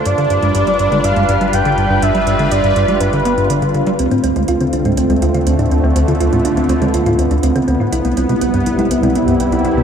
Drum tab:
HH |xxxxxxxxxxxxxxx-|xxxxxxxxxxxxxxxx|xxxxxxxxxxxxxxx-|xxxxxxxxxxxxxxx-|
CG |---o---o-o------|---o---o--------|---o---o-o------|---o---o--------|

HH |xxxxxxxxxxxxxxx-|
CG |---o---o-o------|